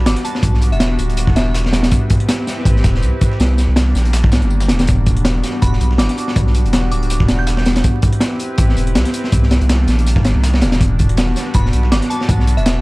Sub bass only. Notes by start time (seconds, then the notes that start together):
0.06 G1
0.43 B1
0.72 E1
0.99 D1
1.36 E1
2.65 A1
2.84 E1
3.03 C2
3.40 C2
3.68 C2
3.95 A#1
4.32 C2
4.42 G1
4.69 E1
5.62 E1
5.81 B1
5.99 G1
6.36 B1
6.65 E1
6.91 D1
7.28 E1
8.58 A1
8.77 E1
8.95 C2
9.33 C2
9.61 C2
9.88 A#1
10.25 G1
10.35 C2
10.62 E1
11.55 E1
11.73 B1
11.92 G1
12.29 B1
12.57 E1